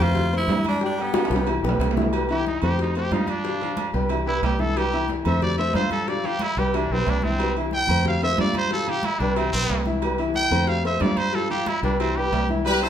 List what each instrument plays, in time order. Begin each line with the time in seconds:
0.00 fingered electric bass F2, grand piano A3 A4 C5, tenor saxophone F4, high conga, low conga, low agogo
0.15 cowbell, high conga, low conga
0.33 grand piano A3 A4 C5, high conga, low agogo
0.37 tenor saxophone E4
0.48 fingered electric bass G2, grand piano E3 E4 E5, cowbell, high conga, low timbale, low agogo
0.64 tenor saxophone D4, cowbell, high conga, low agogo
0.81 grand piano G3 G4 G5, cowbell, high conga
0.85 tenor saxophone D4
0.98 grand piano G3 G4 G5, high conga, low agogo
1.02 tenor saxophone B3
1.14 cowbell, high bongo, high conga, high timbale, low agogo
1.25 high timbale
1.30 fingered electric bass C2, grand piano G3 G4 B4, cowbell, high bongo, high conga
1.36 high timbale
1.47 grand piano E3 E4 E5, cowbell, high conga, low agogo
1.63 fingered electric bass B1, grand piano G3 G4 B4, low bongo, high conga
1.69 low timbale
1.79 fingered electric bass C2, cowbell, low bongo, high conga, low timbale, low agogo
1.91 low timbale
1.96 grand piano E3 E4 E5, low bongo, high conga
2.02 low timbale
2.13 grand piano G3 G4 B4, cowbell, low agogo
2.29 grand piano E3 E4 E5, trumpet G4, high conga, low agogo
2.45 trumpet D#4, cowbell, high conga, low timbale
2.62 fingered electric bass F2, grand piano A3 A4 C5, trumpet G4, high conga, low conga, low agogo
2.79 trumpet D#4, cowbell, high conga
2.95 grand piano A3 A4 C5, trumpet G4, high conga, low agogo
3.11 fingered electric bass G2, grand piano F3 F4 F5, trumpet D#4, cowbell, high conga, low timbale, low agogo
3.27 trumpet D4, cowbell, high conga, low agogo
3.44 grand piano F3 F4 F5, cowbell, high conga
3.60 grand piano F3 F4 F5, high conga, low agogo
3.77 cowbell, high conga, low timbale, low agogo
3.93 fingered electric bass C2, grand piano G3 G4 B4, cowbell, high conga
4.09 grand piano E3 E4 E5, cowbell, high conga, low agogo
4.25 grand piano G3 G4 B4, trumpet E4, high conga
4.43 fingered electric bass C2, trumpet G4, cowbell, high conga, low timbale, low agogo
4.59 grand piano E3 E4 E5, trumpet A4, high conga
4.76 grand piano G3 G4 B4, trumpet G4, cowbell, high conga, low agogo
4.92 grand piano E3 E4 E5, high conga, low agogo
5.08 cowbell, high conga, low timbale
5.25 fingered electric bass F2, grand piano A3 A4 C5, trumpet E5, high conga, low conga, low agogo
5.42 trumpet D5, cowbell, high conga, low conga
5.57 grand piano A3 A4 C5, trumpet E5, high conga, low agogo
5.73 fingered electric bass G2, grand piano F3 F4 F5, trumpet C5, cowbell, high conga, low timbale, low agogo
5.90 trumpet A4, cowbell, high conga, low agogo
6.07 grand piano F3 F4 F5, trumpet D5, cowbell, high conga
6.24 grand piano F3 F4 F5, trumpet G4, high conga, low agogo
6.39 trumpet E4, cowbell, high conga, low timbale, low agogo
6.57 fingered electric bass C2, grand piano G3 G4 B4, trumpet G4, cowbell, high conga
6.73 grand piano E3 E4 E5, trumpet D4, cowbell, high conga, low agogo
6.90 fingered electric bass B1, grand piano G3 G4 B4, trumpet C4, high conga
7.06 fingered electric bass C2, trumpet D4, cowbell, high conga, low timbale, low agogo
7.22 grand piano E3 E4 E5, trumpet C4, high conga
7.38 grand piano G3 G4 B4, cowbell, high conga, low agogo
7.54 grand piano E3 E4 E5, high conga, low agogo
7.71 trumpet G5, cowbell, high conga, low timbale
7.87 fingered electric bass F2, grand piano A3 A4 C5, high conga, low conga, low agogo
8.04 trumpet F5, cowbell, high conga, low conga
8.20 grand piano A3 A4 C5, trumpet E5, high conga, low agogo
8.37 fingered electric bass G2, grand piano F3 F4 F5, trumpet D5, cowbell, high conga, low timbale, low agogo
8.54 trumpet C5, cowbell, high conga, low agogo
8.71 grand piano F3 F4 F5, trumpet A4, cowbell, high conga
8.87 grand piano F3 F4 F5, trumpet G4, high conga, low agogo
9.03 trumpet E4, cowbell, high conga, low timbale, low agogo
9.19 fingered electric bass C2, grand piano G3 G4 B4, trumpet D4, cowbell, high conga
9.36 grand piano E3 E4 E5, trumpet C4, cowbell, high conga, low agogo
9.52 fingered electric bass B1, grand piano G3 G4 B4, trumpet C4, high conga
9.69 fingered electric bass C2, cowbell, high conga, low timbale, low agogo
9.86 grand piano E3 E4 E5, high conga
10.02 grand piano G3 G4 B4, cowbell, high conga, low agogo
10.18 grand piano E3 E4 E5, high conga, low agogo
10.34 trumpet G5, cowbell, high conga, low timbale
10.51 fingered electric bass F2, grand piano A3 A4 C5, high conga, low conga, low agogo
10.67 trumpet F5, cowbell, high conga
10.84 grand piano A3 A4 C5, trumpet E5, high conga, low agogo
11.00 fingered electric bass G2, grand piano F3 F4 F5, trumpet D5, cowbell, high conga, low timbale, low agogo
11.17 trumpet C5, cowbell, high conga, low agogo
11.33 grand piano F3 F4 F5, trumpet A4, cowbell, high conga
11.50 grand piano F3 F4 F5, trumpet G4, high conga, low agogo
11.66 trumpet E4, cowbell, high conga, low timbale, low agogo
11.83 fingered electric bass C2, grand piano G3 G4 B4, trumpet D4, cowbell, high conga
11.99 grand piano E3 E4 E5, trumpet C4, cowbell, high conga, low agogo
12.16 grand piano G3 G4 B4, trumpet G4, high conga
12.32 fingered electric bass C2, cowbell, high conga, low timbale, low agogo
12.49 grand piano E3 E4 E5, high conga
12.65 trombone section G3, trumpet section G4 B4, cowbell, high conga, low agogo
12.82 grand piano E4 E5 E6, trumpet section A4 C5, high conga, low agogo